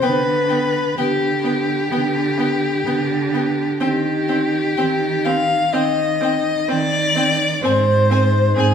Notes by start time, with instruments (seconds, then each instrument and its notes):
0.02 cello D3, viola B3, violin B4 G5
0.49 viola B3, violin G5
0.98 cello D3, viola B3, violin G4 G5
1.44 viola B3, violin G5
1.91 cello D3, viola B3, violin G5
2.38 viola B3, violin G5
2.86 cello D3, viola B3, violin G5
3.33 viola B3, violin G5
3.80 cello D#3, viola C4, violin G4 G5
4.28 viola C4, violin G5
4.77 cello D#3, viola C4, violin G5
5.25 viola C4, violin F5 G5
5.73 cello D#3, viola C4, violin D#5 G5
6.21 viola C4, violin G5
6.68 cello D#3, viola C4, violin D5 G5
7.16 viola C4, violin G5
7.63 cello G#2, viola C4, violin C5 G#5
8.10 viola C4, violin G#5
8.56 cello G#2, viola C4, violin G#4 G#5